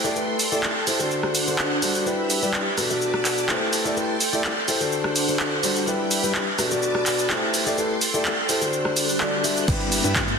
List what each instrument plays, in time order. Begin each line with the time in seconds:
Already playing: string machine A4 G5 C6
0.04 grand piano A3 E4 G4 A4 D5, cabasa
0.16 grand piano A3 E4 G4 A4 B4, cabasa
0.39 open hi-hat, cabasa
0.52 grand piano A3 E4 G4 A4 D5, cabasa
0.63 clap, cabasa
0.87 grand piano E4 G4 A4 C5, open hi-hat, cabasa
0.99 grand piano D3 D4 F#4 A4 C5, cabasa
1.11 string machine D4 C5 F#5, cabasa
1.23 cross-stick
1.35 open hi-hat, cabasa
1.47 grand piano D3 D4 F#4 A4 C5, cabasa
1.59 clap, cabasa
1.82 grand piano G3 D4 F#4 A4 C5, open hi-hat, cabasa
1.95 cabasa
2.06 grand piano G3 D4 E4 G4 B4, string machine G4 E5 B5, cabasa
2.30 open hi-hat, cabasa
2.42 grand piano G3 D4 E4 G4 B4, cabasa
2.54 clap, cabasa
2.78 grand piano B2 D4 F#4 A4 B4, string machine B4 A5 D6, cross-stick, open hi-hat, cabasa
2.90 grand piano B2 D4 F#4 A4 D5, cabasa
3.02 cabasa
3.14 cross-stick
3.25 clap, open hi-hat, cabasa
3.38 cabasa
3.49 grand piano A3 E4 G4 A4 C5, clap, cabasa
3.73 string machine A4 G5 C6, open hi-hat, cabasa
3.85 grand piano A3 E4 G4 A4 D5, cabasa
3.97 grand piano A3 E4 G4 A4 B4, cabasa
4.20 open hi-hat, cabasa
4.33 grand piano A3 E4 G4 A4 D5, cabasa
4.44 clap, cabasa
4.68 grand piano E4 G4 A4 C5, open hi-hat, cabasa
4.80 grand piano D3 D4 F#4 A4 C5, cabasa
4.92 string machine D4 C5 F#5, cabasa
5.04 cross-stick
5.16 open hi-hat, cabasa
5.28 grand piano D3 D4 F#4 A4 C5, cabasa
5.40 clap, cabasa
5.63 grand piano G3 D4 F#4 A4 C5, open hi-hat, cabasa
5.76 cabasa
5.87 grand piano G3 D4 E4 G4 B4, string machine G4 E5 B5, cabasa
6.11 open hi-hat, cabasa
6.23 grand piano G3 D4 E4 G4 B4, cabasa
6.35 clap, cabasa
6.58 grand piano B2 D4 F#4 A4 B4, string machine B4 A5 D6, cross-stick, open hi-hat, cabasa
6.71 grand piano B2 D4 F#4 A4 D5, cabasa
6.82 cabasa
6.95 cross-stick
7.06 clap, open hi-hat, cabasa
7.19 cabasa
7.30 grand piano A3 E4 G4 A4 C5, clap, cabasa
7.54 string machine A4 G5 C6, open hi-hat, cabasa
7.66 grand piano A3 E4 G4 A4 D5, cabasa
7.78 grand piano A3 E4 G4 A4 B4, cabasa
8.01 open hi-hat, cabasa
8.14 grand piano A3 E4 G4 A4 D5, cabasa
8.25 clap, cabasa
8.49 grand piano E4 G4 A4 C5, open hi-hat, cabasa
8.61 grand piano D3 D4 F#4 A4 C5, cabasa
8.73 string machine D4 C5 F#6, swell, cabasa
8.85 cross-stick
8.96 open hi-hat, cabasa
9.09 cabasa
9.20 grand piano D3 D4 F#4 A4 D5, clap, cabasa
9.44 grand piano G3 D4 F#4 A4 E5, open hi-hat, cabasa
9.57 cabasa
9.68 fm bass G1, grand piano G3 D4 E4 G4 B4, string machine G4 E5 B5, kick, closed hi-hat, crash, downlifter, cabasa
9.80 closed hi-hat
9.92 closed hi-hat, open hi-hat, cabasa
10.04 fm bass G2, grand piano G3 D4 E4 G4 B4, closed hi-hat, cabasa
10.16 kick, snare, clap, closed hi-hat, cabasa
10.28 closed hi-hat